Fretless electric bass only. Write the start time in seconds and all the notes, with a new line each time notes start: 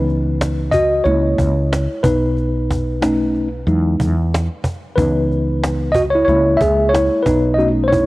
Already playing: C#2
1.05 C#2
1.38 C#2
2.04 B1
3.67 E2
4.00 E2
4.98 C#2
6.28 C#2
6.61 C#2
7.26 B1